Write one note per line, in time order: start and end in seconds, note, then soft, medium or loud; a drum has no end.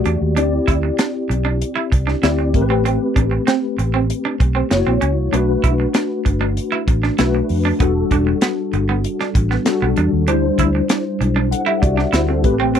0.00 0.28 A3 medium
0.00 0.28 F#4 medium
0.00 0.28 G4 medium
0.00 0.28 D5 medium
0.05 0.16 E2 medium
0.05 0.16 D4 medium
0.05 closed hi-hat medium
0.21 0.37 D#2 medium
0.36 0.58 D2 loud
0.36 1.42 C4 medium
0.36 0.47 D4 medium
0.36 1.42 E4 medium
0.36 1.42 G4 medium
0.36 1.42 D5 medium
0.36 closed hi-hat medium
0.68 0.89 D2 medium
0.68 0.78 E4 medium
0.68 kick medium
0.68 closed hi-hat medium
0.83 muted clean electric guitar stroke soft
0.99 1.09 D4 medium
0.99 snare loud
0.99 closed hi-hat loud
1.29 1.62 B1 loud
1.29 muted clean electric guitar stroke soft
1.29 closed hi-hat medium
1.45 1.55 D4 medium
1.62 closed hi-hat medium
1.76 1.86 E4 medium
1.92 2.14 C2 medium
1.92 muted clean electric guitar stroke soft
1.92 kick medium
1.92 closed hi-hat medium
2.07 2.17 D4 medium
2.07 snare soft
2.22 2.56 D2 medium
2.22 2.53 C4 medium
2.22 2.54 E4 medium
2.22 2.33 E4 medium
2.22 2.54 G4 medium
2.22 2.54 D5 medium
2.22 snare medium
2.22 closed hi-hat medium
2.39 muted clean electric guitar stroke soft
2.54 2.97 A1 medium
2.54 3.59 A3 medium
2.54 3.59 C4 medium
2.54 3.59 G4 medium
2.54 2.61 A#4 medium
2.54 kick medium
2.54 closed hi-hat medium
2.61 3.63 B4 loud
2.70 2.80 C4 medium
2.85 2.95 C4 medium
2.85 closed hi-hat medium
3.16 3.37 A1 medium
3.16 3.26 D4 medium
3.16 kick medium
3.16 closed hi-hat medium
3.31 muted clean electric guitar stroke soft
3.47 3.57 C4 medium
3.47 snare loud
3.47 closed hi-hat medium
3.78 4.10 A1 loud
3.78 muted clean electric guitar stroke soft
3.78 closed hi-hat medium
3.94 4.04 C4 medium
4.10 closed hi-hat medium
4.25 4.35 D4 medium
4.40 4.61 B1 medium
4.40 muted clean electric guitar stroke soft
4.40 kick medium
4.40 closed hi-hat medium
4.55 4.65 C4 medium
4.70 4.82 F#1 medium
4.70 5.23 A#3 medium
4.70 5.23 E4 medium
4.70 5.23 F#4 medium
4.70 5.24 C#5 medium
4.70 muted clean electric guitar stroke soft
4.70 snare medium
4.70 closed hi-hat medium
4.87 4.97 A#1 medium
4.87 4.96 C4 medium
5.01 5.17 C#2 medium
5.01 5.11 C#4 medium
5.01 closed hi-hat medium
5.17 5.28 C2 medium
5.31 5.54 B1 loud
5.31 6.37 A3 medium
5.31 6.37 D4 medium
5.31 5.43 D4 medium
5.31 6.37 F#4 medium
5.31 6.38 B4 loud
5.31 closed hi-hat medium
5.64 5.85 B1 medium
5.64 5.74 E4 medium
5.64 kick medium
5.64 closed hi-hat medium
5.80 muted clean electric guitar stroke soft
5.94 6.05 D4 medium
5.94 snare loud
5.94 closed hi-hat loud
6.25 6.58 G1 medium
6.25 muted clean electric guitar stroke soft
6.25 kick medium
6.25 closed hi-hat medium
6.41 6.51 D4 medium
6.57 closed hi-hat medium
6.72 6.82 E4 medium
6.87 7.09 A1 medium
6.87 muted clean electric guitar stroke soft
6.87 kick medium
6.87 closed hi-hat medium
7.03 7.13 D4 medium
7.03 snare soft
7.18 7.40 B1 medium
7.18 7.71 A3 medium
7.18 7.71 D4 medium
7.18 7.29 E4 medium
7.18 7.71 F#4 medium
7.18 7.71 B4 medium
7.18 snare medium
7.18 closed hi-hat medium
7.35 muted clean electric guitar stroke soft
7.49 7.71 F2 medium
7.49 open hi-hat medium
7.65 7.75 D4 medium
7.80 8.01 E1 medium
7.80 8.85 G3 medium
7.80 7.90 B3 medium
7.80 8.85 D4 medium
7.80 8.85 F#4 medium
7.80 8.86 A4 medium
7.80 kick loud
7.80 closed hi-hat medium
8.11 8.32 E1 medium
8.11 8.22 D4 medium
8.11 kick medium
8.11 closed hi-hat medium
8.27 muted clean electric guitar stroke soft
8.41 8.52 B3 medium
8.41 snare loud
8.41 closed hi-hat loud
8.73 9.05 G1 medium
8.73 muted clean electric guitar stroke soft
8.73 closed hi-hat medium
8.89 8.99 B3 medium
9.04 closed hi-hat medium
9.20 9.30 D4 medium
9.20 snare soft
9.35 9.56 A1 loud
9.35 muted clean electric guitar stroke soft
9.35 kick medium
9.35 closed hi-hat medium
9.51 9.61 B3 medium
9.51 snare soft
9.65 10.18 G3 medium
9.65 10.18 D4 medium
9.65 10.18 F#4 medium
9.65 10.19 A4 medium
9.65 muted clean electric guitar stroke soft
9.65 snare loud
9.65 closed hi-hat medium
9.82 9.92 B1 medium
9.82 9.92 B3 medium
9.96 10.08 E2 medium
9.96 10.07 D4 medium
9.96 closed hi-hat medium
10.13 10.28 D#2 medium
10.27 10.49 D2 loud
10.27 11.32 G3 medium
10.27 11.32 D4 medium
10.27 10.38 D4 medium
10.27 11.33 E4 medium
10.27 11.33 C5 loud
10.27 closed hi-hat medium
10.58 10.80 D2 medium
10.58 10.69 E4 medium
10.58 kick medium
10.58 closed hi-hat medium
10.75 muted clean electric guitar stroke soft
10.89 11.00 D4 medium
10.89 snare loud
10.89 closed hi-hat loud
11.21 11.53 B1 medium
11.21 muted clean electric guitar stroke soft
11.21 closed hi-hat medium
11.36 11.46 D4 medium
11.51 11.67 A4 medium
11.51 11.66 F#5 medium
11.51 closed hi-hat medium
11.66 11.77 E4 medium
11.66 11.82 G4 medium
11.66 11.81 E5 medium
11.82 12.04 C2 medium
11.82 12.12 F#4 medium
11.82 12.11 D5 medium
11.82 muted clean electric guitar stroke soft
11.82 kick loud
11.82 closed hi-hat medium
11.97 12.08 D4 medium
11.97 snare soft
12.13 12.45 D2 loud
12.13 12.23 E4 medium
12.13 12.29 E4 medium
12.13 12.28 C5 medium
12.13 snare loud
12.13 closed hi-hat medium
12.28 12.43 C4 medium
12.28 12.58 A4 medium
12.28 muted clean electric guitar stroke soft
12.44 12.80 A1 medium
12.44 12.80 A3 medium
12.44 12.80 C4 medium
12.44 12.80 G4 medium
12.44 12.80 B4 medium
12.44 kick loud
12.44 closed hi-hat medium
12.60 12.70 C4 medium
12.75 12.80 C4 medium
12.75 closed hi-hat medium